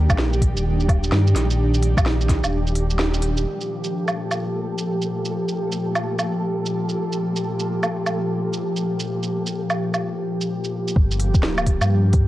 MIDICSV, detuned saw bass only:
0, 0, Header, 1, 2, 480
1, 0, Start_track
1, 0, Key_signature, -2, "minor"
1, 0, Tempo, 468750
1, 1625, Time_signature, 4, 2, 24, 8
1, 12573, End_track
2, 0, Start_track
2, 0, Title_t, "Detuned saw bass"
2, 0, Program_c, 0, 39
2, 98, Note_on_c, 0, 34, 86
2, 558, Note_off_c, 0, 34, 0
2, 570, Note_on_c, 0, 27, 104
2, 1130, Note_off_c, 0, 27, 0
2, 1144, Note_on_c, 0, 43, 101
2, 1370, Note_off_c, 0, 43, 0
2, 1383, Note_on_c, 0, 34, 96
2, 1996, Note_off_c, 0, 34, 0
2, 2017, Note_on_c, 0, 34, 89
2, 2477, Note_off_c, 0, 34, 0
2, 2503, Note_on_c, 0, 27, 101
2, 2823, Note_off_c, 0, 27, 0
2, 2829, Note_on_c, 0, 27, 102
2, 3536, Note_off_c, 0, 27, 0
2, 11228, Note_on_c, 0, 31, 102
2, 11599, Note_off_c, 0, 31, 0
2, 11618, Note_on_c, 0, 26, 87
2, 12078, Note_off_c, 0, 26, 0
2, 12092, Note_on_c, 0, 43, 101
2, 12573, Note_off_c, 0, 43, 0
2, 12573, End_track
0, 0, End_of_file